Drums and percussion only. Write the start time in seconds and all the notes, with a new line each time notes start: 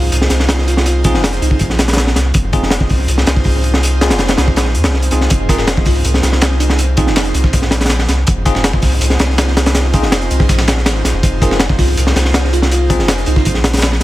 0.12 closed hi-hat
0.22 snare
0.30 snare, closed hi-hat
0.40 snare
0.49 snare, closed hi-hat
0.58 snare
0.68 closed hi-hat
0.77 snare
0.86 closed hi-hat
1.04 kick, closed hi-hat
1.14 snare
1.24 snare, closed hi-hat
1.32 closed hi-hat
1.42 closed hi-hat
1.51 kick
1.59 kick, closed hi-hat
1.70 snare
1.79 snare, closed hi-hat
1.88 snare, closed hi-hat
1.93 snare, closed hi-hat
1.97 snare, closed hi-hat
2.07 snare
2.16 snare, closed hi-hat
2.34 kick, closed hi-hat
2.53 kick, closed hi-hat
2.63 snare
2.71 snare, closed hi-hat
2.80 kick
2.89 kick, open hi-hat
3.08 closed hi-hat
3.18 snare
3.27 snare, closed hi-hat
3.36 kick
3.44 kick, open hi-hat
3.64 closed hi-hat
3.74 snare
3.83 closed hi-hat
4.01 snare, closed hi-hat
4.10 snare, closed hi-hat
4.19 snare, closed hi-hat
4.28 snare, closed hi-hat
4.38 snare, closed hi-hat
4.48 kick
4.56 snare, closed hi-hat
4.66 snare
4.75 closed hi-hat
4.84 snare, closed hi-hat
4.94 snare
5.02 closed hi-hat
5.11 closed hi-hat
5.21 snare
5.30 kick, closed hi-hat
5.49 kick, snare, closed hi-hat
5.58 snare
5.67 snare, closed hi-hat
5.77 kick
5.85 kick, snare, closed hi-hat, open hi-hat
5.96 closed hi-hat
6.05 closed hi-hat
6.14 snare
6.23 snare, closed hi-hat
6.32 snare
6.41 snare, closed hi-hat
6.51 snare
6.60 closed hi-hat
6.70 snare
6.79 closed hi-hat
6.97 kick, closed hi-hat
7.07 snare
7.16 snare, closed hi-hat
7.25 closed hi-hat
7.34 closed hi-hat
7.44 kick, snare
7.53 kick, closed hi-hat
7.62 snare
7.71 snare, closed hi-hat
7.81 snare, closed hi-hat
7.85 snare, closed hi-hat
7.89 snare, closed hi-hat
7.99 snare
8.09 snare, closed hi-hat
8.27 kick, closed hi-hat
8.45 kick, snare, closed hi-hat
8.55 snare
8.64 snare, closed hi-hat
8.73 kick
8.82 kick, snare, closed hi-hat, open hi-hat
8.92 closed hi-hat
9.01 closed hi-hat
9.10 snare
9.19 snare, closed hi-hat
9.30 snare
9.38 snare, closed hi-hat
9.48 snare
9.57 snare, closed hi-hat
9.66 snare, closed hi-hat
9.75 snare, closed hi-hat
9.93 kick, closed hi-hat
10.03 snare
10.12 snare, closed hi-hat
10.22 closed hi-hat
10.31 closed hi-hat
10.40 kick, snare
10.49 kick, snare, closed hi-hat
10.58 snare, closed hi-hat
10.68 snare, closed hi-hat
10.77 snare
10.86 snare, closed hi-hat
11.04 snare, closed hi-hat
11.23 kick, closed hi-hat
11.42 kick, snare, closed hi-hat
11.51 snare
11.60 snare, closed hi-hat
11.69 kick
11.79 kick, snare, closed hi-hat, open hi-hat
11.88 closed hi-hat
11.97 closed hi-hat
12.07 snare
12.16 snare, closed hi-hat
12.25 snare
12.34 snare, closed hi-hat
12.45 snare
12.53 closed hi-hat
12.62 snare
12.71 closed hi-hat
12.90 kick, closed hi-hat
12.99 snare
13.08 snare, closed hi-hat
13.18 closed hi-hat
13.26 closed hi-hat
13.36 kick, snare
13.45 kick, closed hi-hat
13.54 snare
13.64 snare, closed hi-hat
13.73 snare, closed hi-hat
13.77 snare, closed hi-hat
13.82 snare, closed hi-hat
13.92 snare